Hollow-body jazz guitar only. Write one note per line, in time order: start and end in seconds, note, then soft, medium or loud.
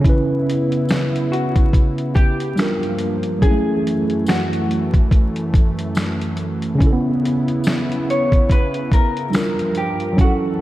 1.32 2.15 F#4 medium
2.15 2.96 G4 loud
3.42 4.23 G#4 loud
4.28 5.08 F#4 loud
8.10 8.52 C#5 loud
8.52 8.93 B4 loud
8.94 9.73 A#4 loud
9.77 10.20 G4 medium
10.21 10.32 F#4 loud